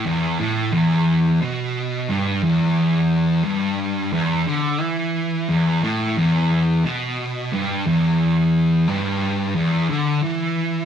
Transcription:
\new Staff \with { instrumentName = "Distorted electric guitar" } { \clef bass \time 4/4 \key e \minor \tempo 4 = 88 e,8 a,8 e,4 b,4 g,8 e,8~ | e,4 g,4 e,8 d8 e4 | e,8 a,8 e,4 b,4 g,8 e,8~ | e,4 g,4 e,8 d8 e4 | }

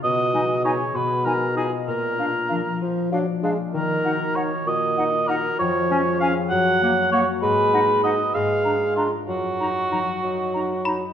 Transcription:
<<
  \new Staff \with { instrumentName = "Xylophone" } { \time 6/8 \key ees \minor \tempo 4. = 65 r2. | r2. | r2. | r2. |
r2. | r2 r8 ces'''8 | }
  \new Staff \with { instrumentName = "Flute" } { \time 6/8 \key ees \minor r8 aes''8 aes''8 r8 aes''8 aes''8 | r8 f''8 f''8 r8 f''8 f''8 | r8 ges''8 ges''8 r8 ges''8 ges''8 | r8 aes''8 aes''8 r8 ges''8 ges''8 |
r8 ges''8 ges''8 r8 bes''8 bes''8 | r8 bes''8 bes''8 r8 bes''8 bes''8 | }
  \new Staff \with { instrumentName = "Cor anglais" } { \time 6/8 \key ees \minor ees''4 des''8 ces''8 bes'8 aes'8 | bes'4. r4. | bes'4 des''8 ees''4 bes'8 | des''4 f''8 ges''4 des''8 |
ces''4 ees''8 f''4 f'8 | ges'2~ ges'8 r8 | }
  \new Staff \with { instrumentName = "Harp" } { \time 6/8 \key ees \minor ces8 aes8 <aes' ces''>8 ces8 aes8 <f' ees''>8 | bes,8 f'8 f8 f'8 d''8 f'8 | ees8 ges'8 ees'8 ges'8 ees''8 ges'8 | f,8 aes8 <aes' des''>8 ges,8 bes8 <ges' des''>8 |
aes,8 ees'8 <ges' ces''>8 aes,8 d'8 <f' bes'>8 | ges,8 ees'8 ges8 ees'8 bes'8 ees'8 | }
  \new Staff \with { instrumentName = "Clarinet" } { \time 6/8 \key ees \minor r8 ees'8 ees'8 r8 ees'8 ees'8 | r8 d'8 d'8 r8 d'8 d'8 | r8 ees'8 ees'8 r8 ees'8 ees'8 | r8 des'8 des'8 r8 bes8 bes8 |
r8 ees'8 ees'8 r8 d'8 d'8 | r8 ees'8 ees'8 r8 ees'8 ees'8 | }
  \new Staff \with { instrumentName = "Bassoon" } { \clef bass \time 6/8 \key ees \minor ces4. ces4. | bes,4. f8 ges8 aes8 | ees4. bes,4. | f4. ges4. |
aes4. aes4. | ges4. ges4. | }
>>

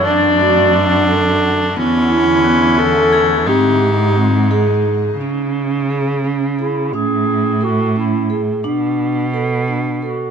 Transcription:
<<
  \new Staff \with { instrumentName = "Crotales" } { \time 5/8 \key cis \phrygian \tempo 4 = 87 <cis''' e''' gis''' a'''>4 r4. | r4 fis'''4 gis'''8~ | gis'''8 r2 | r2 r8 |
r2 r8 | r2 r8 | }
  \new Staff \with { instrumentName = "Clarinet" } { \time 5/8 \key cis \phrygian d''2 r8 | e'4. a'4 | g'4. r4 | r2 e'8 |
gis'4 fis'8 e'8. r16 | r2 fis'8 | }
  \new Staff \with { instrumentName = "Vibraphone" } { \time 5/8 \key cis \phrygian d'8 fis'8 d'8 a'4 | b8 e'8 b8 a'4 | bis8 g'8 bis8 gis'4 | cis'4 gis'8 cis'8 gis'8 |
cis'4 a'8 cis'8 gis'8 | d'4 a'8 d'8 a'8 | }
  \new Staff \with { instrumentName = "Viola" } { \time 5/8 \key cis \phrygian d'2~ d'8 | cis'2~ cis'8 | dis'2 r8 | r2 r8 |
r2 r8 | r2 r8 | }
  \new Staff \with { instrumentName = "Ambient pad" } { \time 5/8 \key cis \phrygian << { <d' fis'>2~ <d' fis'>8 | <a e'>2~ <a e'>8 | <gis dis'>2~ <gis dis'>8 | r2 r8 |
r2 r8 | r2 r8 | } \\ { d2~ d8~ | d2~ d8 | bis,2~ bis,8 | r2 r8 |
r2 r8 | r2 r8 | } >> }
  \new Staff \with { instrumentName = "Cello" } { \clef bass \time 5/8 \key cis \phrygian fis,2~ fis,8 | e,2~ e,8 | gis,2~ gis,8 | cis2~ cis8 |
a,2~ a,8 | b,2~ b,8 | }
>>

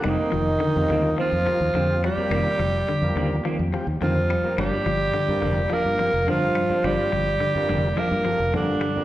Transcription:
<<
  \new Staff \with { instrumentName = "Tenor saxophone" } { \time 4/4 \key g \minor \tempo 4 = 106 ees'2 f'4. g'8~ | g'2~ g'8 r8 f'4 | g'2 bes'4 f'4 | g'2 bes'4 d'4 | }
  \new Staff \with { instrumentName = "Transistor combo organ" } { \time 4/4 \key g \minor r4 r16 <g c' f' bes'>8 r8. <g c' f' bes'>16 r16 <g c' f' g'>16 r8 <g c' f' bes'>16~ | <g c' f' bes'>8 r8. <g c' f' bes'>8 r8. <g c' f' g'>16 r16 <g c' f' bes'>16 r8 <g c' f' bes'>16 | r4 r16 <g c' f' bes'>8 r8. <g c' f' bes'>16 r16 <g c' f' bes'>16 r8 <g c' f' c''>16~ | <g c' f' c''>8 r8. <g c' f' bes'>8 r8. <g c' f' a'>16 r16 <g c' f' bes'>16 r8 <g c' f' bes'>16 | }
  \new Staff \with { instrumentName = "Clean electric guitar" } { \time 4/4 \key g \minor <ees bes c'>16 <bes c'>16 r4 <ees bes c'>16 r16 <ees bes c'>16 r8. <bes c'>16 r8 <bes c'>16 | <ees bes c'>16 c'16 r4 <ees bes c'>16 r16 <ees bes c'>16 r8. <ees bes c'>16 r8 <bes c'>16 | <f bes d'>16 d'16 r4 <f bes d'>16 r16 <f bes d'>16 r8. <f d'>16 r8 <bes d'>16 | <f bes d'>16 <bes d'>16 r4 <f bes d'>16 r16 <f bes d'>16 r8. <f bes>16 r8 <bes d'>16 | }
  \new Staff \with { instrumentName = "Bassoon" } { \clef bass \time 4/4 \key g \minor ees2 f4. g8~ | g2~ g8 r8 f4 | g2 bes4 f4 | g2 bes4 d4 | }
  \new Staff \with { instrumentName = "Clean electric guitar" } { \clef bass \time 4/4 \key g \minor g8 f8 d8 d8 f8 f8 d8 g8 | bes8 f8 d8 d8 f8 f8 d8 g8 | g8 f8 d8 d8 f8 f8 d8 g8 | g8 f8 d8 d8 f8 f8 d8 g8 | }
  \new Staff \with { instrumentName = "Fingered electric bass" } { \clef bass \time 4/4 \key g \minor f,,16 r16 f,,8 r16 f,16 ees,8 r16 f,16 r16 ees,16 f,8. r16 | f,,16 r16 f,,8 r16 f,16 ees,8 r16 f,16 r16 ees,16 f,8. r16 | g,,16 r16 g,,8 r16 g,16 f,,8 r16 g,16 r16 f,,16 g,8. r16 | g,,16 r16 g,,8 r16 g,16 f,,8 r16 g,16 r16 f,,16 g,8. r16 | }
>>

